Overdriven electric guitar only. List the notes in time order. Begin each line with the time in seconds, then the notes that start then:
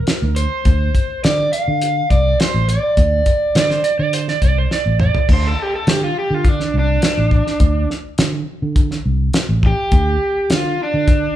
Already playing: A#4
0.36 C5
1.24 D5
1.53 F5
2.11 D5
2.41 C5
2.70 D5
5.33 C5
5.47 A4
5.62 G4
5.75 A4
5.90 G4
6.04 F4
6.19 G4
6.35 F4
6.48 D4
6.79 D4
9.66 G4
10.55 F4
10.83 D4